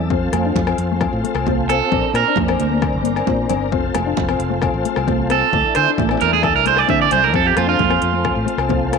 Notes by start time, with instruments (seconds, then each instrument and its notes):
Already playing: fingered electric bass E2, tonewheel organ A4
0.10 fingered electric bass F2, tonewheel organ C4 F4, clean electric guitar C4, kick, muted conga
0.32 fingered electric bass F2, cross-stick, closed hi-hat, muted conga, high conga, low agogo
0.45 clean electric guitar D4
0.55 fingered electric bass F2, kick, high conga
0.67 clean electric guitar C4, cross-stick, low agogo
0.78 fingered electric bass F2, closed hi-hat
0.92 clean electric guitar A3
1.01 kick, cross-stick, muted conga, low agogo
1.13 fingered electric bass A2
1.24 clean electric guitar A3, closed hi-hat
1.35 fingered electric bass C2, cross-stick, low agogo
1.47 clean electric guitar C4, kick, high conga
1.69 clean electric guitar C4 A4, cross-stick, closed hi-hat, muted conga, low agogo
1.92 fingered electric bass A#1, clean electric guitar C4, tonewheel organ D4 A#4, kick, muted conga
2.14 fingered electric bass A#2, clean electric guitar A#4, cross-stick, closed hi-hat, muted conga, low agogo
2.28 clean electric guitar D4
2.36 fingered electric bass F2, kick, high conga
2.48 clean electric guitar C4, cross-stick, low agogo
2.59 fingered electric bass D2, closed hi-hat, high conga
2.71 clean electric guitar A#3
2.82 kick, cross-stick, muted conga, low agogo
2.93 fingered electric bass G1
3.03 clean electric guitar A#3, closed hi-hat
3.16 cross-stick, low agogo
3.26 fingered electric bass A#2, clean electric guitar C4, kick, high conga
3.49 fingered electric bass G1, clean electric guitar C4, closed hi-hat, muted conga, low conga, low agogo
3.71 fingered electric bass F1, clean electric guitar C4, tonewheel organ C4 F4 A4, kick, muted conga
3.95 fingered electric bass F1, cross-stick, closed hi-hat, muted conga, high conga, low agogo
4.06 clean electric guitar D4
4.17 fingered electric bass F1, kick, high conga
4.29 clean electric guitar C4, cross-stick, low agogo
4.39 fingered electric bass F1, closed hi-hat
4.50 clean electric guitar A3
4.62 kick, cross-stick, muted conga, low agogo
4.74 fingered electric bass A1
4.85 clean electric guitar A3, closed hi-hat
4.96 fingered electric bass C2, cross-stick, low agogo
5.07 clean electric guitar C4, kick, high conga
5.30 clean electric guitar C4 A4, cross-stick, closed hi-hat, muted conga, low agogo
5.51 fingered electric bass D2, tonewheel organ D4 E4, muted clean electric guitar stroke, kick, muted conga
5.75 fingered electric bass D3, clean electric guitar C5, cross-stick, closed hi-hat, muted conga, low agogo
5.88 clean electric guitar D4
5.98 fingered electric bass A1, kick, high conga
6.09 clean electric guitar C4, cross-stick, low agogo
6.21 fingered electric bass E2, clean electric guitar A#4, closed hi-hat, high conga
6.33 clean electric guitar A3 G#4
6.43 clean electric guitar A4, kick, cross-stick, muted conga, low agogo
6.56 fingered electric bass C2, clean electric guitar A#4
6.65 clean electric guitar A3 C5, closed hi-hat
6.77 clean electric guitar D5, cross-stick, low agogo
6.88 fingered electric bass D3, clean electric guitar C4 E5, kick, high conga
7.01 clean electric guitar D5
7.11 fingered electric bass C2, clean electric guitar C4 C5, closed hi-hat, muted conga, low conga, low agogo
7.24 clean electric guitar A#4
7.33 fingered electric bass F2, clean electric guitar C4 A4, tonewheel organ C4 F4, kick, muted conga
7.47 clean electric guitar G4
7.56 fingered electric bass F2, clean electric guitar F4, cross-stick, closed hi-hat, muted conga, high conga, low agogo
7.67 clean electric guitar D4 F4
7.79 fingered electric bass F2, kick, high conga
7.90 clean electric guitar C4, cross-stick, low agogo
8.02 fingered electric bass F2, closed hi-hat
8.12 clean electric guitar A3
8.24 kick, cross-stick, muted conga, low agogo
8.36 fingered electric bass A2
8.46 clean electric guitar A3, closed hi-hat
8.58 fingered electric bass C2, cross-stick, low agogo
8.69 clean electric guitar C4, kick, high conga
8.92 clean electric guitar C4, cross-stick, closed hi-hat, muted conga, low agogo